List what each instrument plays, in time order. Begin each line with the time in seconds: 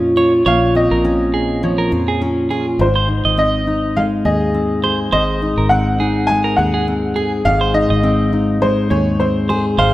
Already playing: fingered electric bass F2, steel-string acoustic guitar A#2 F3 C#4 F4, upright piano C#5
0.17 steel-string acoustic guitar F4, clean electric guitar C#5
0.46 fingered electric bass A#1, steel-string acoustic guitar A#2, clean electric guitar C#5, upright piano F5
0.75 steel-string acoustic guitar C4, upright piano D#5
0.91 fingered electric bass A#1, clean electric guitar A#4
1.04 steel-string acoustic guitar C#4
1.34 clean electric guitar G#4
1.63 steel-string acoustic guitar F3, upright piano C#5
1.78 clean electric guitar A#4
1.92 fingered electric bass F2, steel-string acoustic guitar F4
2.08 clean electric guitar G#4
2.21 steel-string acoustic guitar C#4
2.50 steel-string acoustic guitar F4, clean electric guitar G#4
2.79 fingered electric bass G#1, steel-string acoustic guitar G#2, upright piano C5
2.96 clean electric guitar C5
3.08 steel-string acoustic guitar D#4
3.25 fingered electric bass G#1, clean electric guitar D#5
3.37 steel-string acoustic guitar C4, upright piano D#5
3.67 steel-string acoustic guitar D#4
3.97 steel-string acoustic guitar G#3, upright piano F5
4.25 fingered electric bass D#2, steel-string acoustic guitar G#4, upright piano D#5
4.54 steel-string acoustic guitar C4
4.83 steel-string acoustic guitar G#4, clean electric guitar C5
5.12 fingered electric bass G#1, steel-string acoustic guitar G#2, clean electric guitar C5, upright piano D#5
5.42 steel-string acoustic guitar D#4
5.58 fingered electric bass G#1, clean electric guitar A#4
5.69 steel-string acoustic guitar C4, upright piano F#5
6.00 steel-string acoustic guitar D#4, clean electric guitar G#4
6.27 steel-string acoustic guitar G#3, upright piano G#5
6.44 clean electric guitar A#4
6.56 fingered electric bass D#2, steel-string acoustic guitar G#4, upright piano F#5
6.74 clean electric guitar G#4
6.88 steel-string acoustic guitar C4
7.16 clean electric guitar G#4, steel-string acoustic guitar G#4
7.45 fingered electric bass G#1, steel-string acoustic guitar G#2, upright piano F5
7.61 clean electric guitar C5
7.74 steel-string acoustic guitar D#4, upright piano D#5
7.90 fingered electric bass G#1, clean electric guitar D#5
8.03 steel-string acoustic guitar C4
8.33 steel-string acoustic guitar D#4
8.62 steel-string acoustic guitar G#3, upright piano C5
8.90 fingered electric bass D#2, steel-string acoustic guitar G#4, upright piano C#5
9.20 steel-string acoustic guitar C4, upright piano C5
9.49 steel-string acoustic guitar G#4, clean electric guitar C5
9.78 fingered electric bass G#1, steel-string acoustic guitar G#2, clean electric guitar C5, upright piano F5